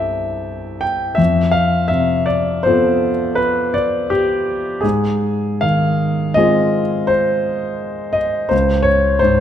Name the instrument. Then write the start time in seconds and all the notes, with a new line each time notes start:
grand piano
Already playing: C2 G2 C4 E4 G4 A4 E5 G5 A5
0.81 G5
1.15 F2 E5
1.51 F5
1.88 C3 E5
2.26 D5
2.63 B3 C4 F4 C5
2.67 A4
3.35 B4
3.74 D5
4.10 G4
4.81 G#2 G#4
5.61 D#3 F5
6.34 G#3 C4 F4 G#4 D#5
7.07 C5
8.13 D#5
8.49 C#2 C5
8.82 C#5
9.19 G#2 C5